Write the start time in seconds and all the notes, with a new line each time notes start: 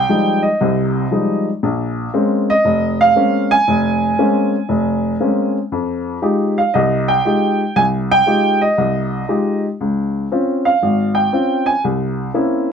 Already playing: G5
0.09 F3 G3 G#3 D#4
0.43 D#5
0.61 C2 C3
1.11 F3 G3 G#3 D#4
1.63 A#1
2.14 G#3 A#3 C4 C#4
2.50 D#5
2.65 F1
3.01 F5
3.16 G#3 A#3 C4 C#4
3.51 G#5
3.68 F1
4.19 G#3 A#3 C4 C#4
4.69 F1
5.20 G#3 A#3 C4 C#4
5.72 F2
6.22 G#3 D#4 F4 G4
6.58 F5
6.74 C2 D#5
7.08 G5
7.25 G#3 D#4 F4 G4
7.76 C2 G#5
8.11 G5
8.26 G#3 D#4 F4 G4
8.62 D#5
8.78 C2
9.28 G#3 D#4 F4 G4
9.81 C#2
10.32 C4 C#4 F4
10.65 F5
10.82 G#1
11.15 G5
11.33 C4 C#4 F4
11.66 G#5
11.84 C2
12.34 A#3 C4 C#4 E4